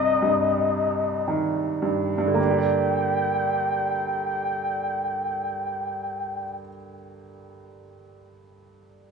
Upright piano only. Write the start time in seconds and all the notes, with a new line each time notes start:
Already playing: C2 G2 C3
0.22 G2
1.28 D#3
1.82 G2
2.18 G2
2.26 D3
2.34 A#3
2.42 D4
2.50 G4
2.58 D5